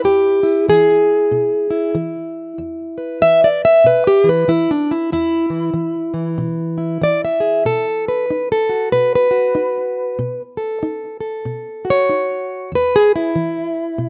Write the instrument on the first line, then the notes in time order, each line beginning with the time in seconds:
steel-string acoustic guitar
Already playing: E4
0.04 E2 G4
0.43 E4
0.69 E3 G#4
1.32 B2
1.70 E4
1.95 E3
2.58 E2
2.98 B4
3.22 E3 E5
3.44 D5
3.65 E5
3.84 B2 B4
4.07 G4
4.24 E3
4.29 B4
4.48 E3 E4
4.71 D4
4.91 E4
5.12 E2 E4
5.50 E3
5.74 E3
6.14 E3
6.38 B2
6.78 E4
7.02 E3 D5
7.25 E5
7.40 G#4
7.65 B2 A4
8.08 B4
8.30 D#4
8.52 A4
8.69 F#4
8.92 B2 B4
9.15 B4
9.31 F#4
9.55 D#4
10.19 B2
10.57 A4
10.83 D#4
11.21 A4
11.45 B2
11.85 F#4
11.90 C#5
12.09 D#4
12.72 E2 B4
12.96 G#4
13.16 E4
13.35 E3
13.98 B2